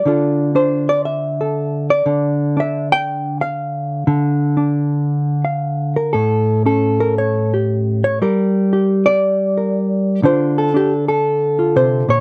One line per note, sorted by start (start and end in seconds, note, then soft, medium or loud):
0.00 0.88 D5 medium
0.05 2.05 D3 medium
0.05 0.55 D4 soft
0.05 2.63 F4 soft
0.05 0.55 A4 soft
0.55 2.56 D4 medium
0.55 1.40 C5 medium
0.89 1.05 D5 medium
1.05 1.89 E5 medium
1.41 2.95 A4 soft
1.90 2.57 D5 medium
2.06 4.06 D3 medium
2.57 4.05 D4 medium
2.57 2.92 E5 medium
2.92 3.41 G5 loud
3.41 4.92 F5 medium
4.07 6.14 D3 medium
4.57 6.12 D4 medium
5.45 6.13 F5 soft
5.96 6.14 A#4 medium
6.13 8.21 A2 medium
6.13 6.65 A4 medium
6.66 8.19 C#4 soft
6.66 7.53 A4 medium
7.00 7.18 A#4 medium
7.18 8.03 C#5 medium
7.54 8.20 G4 soft
8.04 8.21 C#5 medium
8.22 10.24 G3 medium
8.22 8.72 G4 soft
8.22 9.24 A#4 medium
8.73 10.22 G4 medium
9.06 10.24 D5 loud
9.58 10.23 A#4 soft
10.23 12.20 D3 medium
10.23 10.73 D4 soft
10.23 10.75 F4 soft
10.23 11.08 C5 medium
10.58 11.07 A4 medium
10.74 12.20 D4 medium
10.74 10.92 G4 medium
11.08 12.09 A4 medium
11.59 12.20 F4 soft
11.76 12.08 C3 medium
11.76 12.20 C5 medium
12.08 12.20 A#2 medium
12.08 12.20 C#5 medium